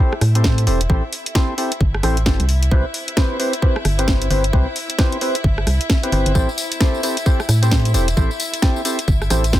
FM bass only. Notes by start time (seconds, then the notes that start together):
0.21 A2
0.67 E1
0.90 A1
1.81 G1
2.03 A1
2.26 G1
2.40 C2
2.71 C2
3.85 G1
4.30 G1
4.53 C2
5.44 G1
5.67 C2
6.12 G1
6.26 G1
6.35 A1
7.49 A2
7.94 E1
8.17 A1
9.08 G1
9.31 A1
9.53 G1